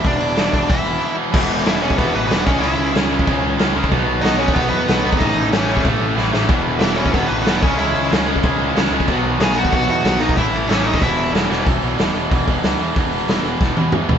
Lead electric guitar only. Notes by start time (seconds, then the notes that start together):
0.06 D4 D5
0.53 D4 D5
0.70 E4 E5
1.67 E4 E5
1.82 C#4 C#5
1.97 B3 B4
2.15 B3 B4
2.28 B3 B4
2.45 C#4 C#5
2.59 E4 E5
4.22 D#4 D#5
4.38 C#4 C#5
4.54 B3 B4
4.69 B3 B4
5.18 D#4 D#5
5.53 C#4 C#5
6.80 E4 E5
6.96 C#4 C#5
7.11 B3 B4
7.27 B3 B4
7.43 B3 B4
7.61 C#4 C#5
7.78 E4 E5
9.41 G#4 G#5
9.56 F#4 F#5
9.73 F#4 F#5
9.89 F#4 F#5
10.21 D#4 D#5
10.38 E4 E5
10.68 C#4 C#5
10.86 D#4 D#5
11.01 E4 E5